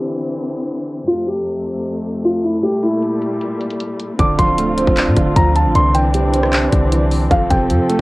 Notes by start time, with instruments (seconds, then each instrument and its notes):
Already playing: string section D3 E3 C4, grand piano G4
0.10 closed hi-hat
0.30 closed hi-hat
0.49 closed hi-hat
0.69 closed hi-hat
0.88 closed hi-hat
1.07 string section F2 C3 A3, grand piano F4, closed hi-hat
1.27 grand piano G4, closed hi-hat
1.47 closed hi-hat
1.66 closed hi-hat
1.85 closed hi-hat
2.05 closed hi-hat
2.25 grand piano F4, closed hi-hat
2.44 grand piano E4, closed hi-hat
2.63 string section A#2 G3, grand piano G4, closed hi-hat
2.83 grand piano E4, closed hi-hat
3.02 closed hi-hat
3.22 closed hi-hat
3.41 closed hi-hat
3.61 closed hi-hat
3.71 closed hi-hat
3.80 closed hi-hat
4.00 closed hi-hat
4.19 808-style bass D1, string section D3 C4 F4, felt piano D3, grand piano D6, kick, closed hi-hat
4.38 808-style bass D1, felt piano F3, grand piano C6, kick, closed hi-hat
4.58 felt piano A3, closed hi-hat
4.77 felt piano C4, closed hi-hat
4.87 808-style bass D1, kick
4.97 felt piano D4, clap, closed hi-hat
5.07 808-style bass A2
5.17 808-style bass D1, felt piano D3, kick, closed hi-hat
5.36 808-style bass D2, felt piano F3, grand piano A#5, kick, closed hi-hat
5.56 grand piano A5, closed hi-hat
5.65 808-style bass A1
5.75 808-style bass C2, felt piano D3, string section E3 D4, grand piano C6, closed hi-hat
5.94 felt piano E3, grand piano G5, closed hi-hat
6.14 felt piano G3, closed hi-hat
6.34 felt piano C4, closed hi-hat
6.43 cross-stick
6.53 felt piano D4, clap, closed hi-hat
6.72 808-style bass C2, felt piano D3, kick, closed hi-hat
6.92 felt piano E3, closed hi-hat
7.11 open hi-hat
7.31 808-style bass F1, felt piano F2, string section F3 A4, grand piano F5, kick, closed hi-hat
7.50 808-style bass F1, felt piano C3, grand piano G5, kick, closed hi-hat
7.70 808-style bass F2, felt piano F3, closed hi-hat
7.89 felt piano A3, closed hi-hat